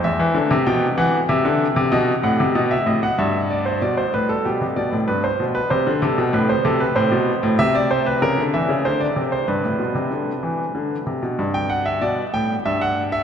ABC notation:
X:1
M:3/4
L:1/16
Q:1/4=95
K:Am
V:1 name="Grand piano"
e4 g2 ^f2 e4 | ^d2 ^f2 d e d f e2 =d c | d c B A G2 d2 B c2 B | c2 A2 B c A B c4 |
[K:G] e d c B ^A2 e2 c d2 c | B8- B2 z2 | z g f e d2 g2 e f2 e |]
V:2 name="Grand piano" clef=bass
E,, E, D, C, B,,2 E,2 C, D,2 C, | B,,2 A,, C, B,,2 A,,2 G,,4 | B,,2 A,,2 B,, C, B,, A,, G,,2 B,,2 | C, D, C, B,, A,,2 C,2 A,, B,,2 A,, |
[K:G] C,4 ^C, D, E, C, D,2 =C,2 | G,, A,, B,, C, D,2 E,2 D,2 C, B,, | G,,4 B,,2 A,,2 G,,4 |]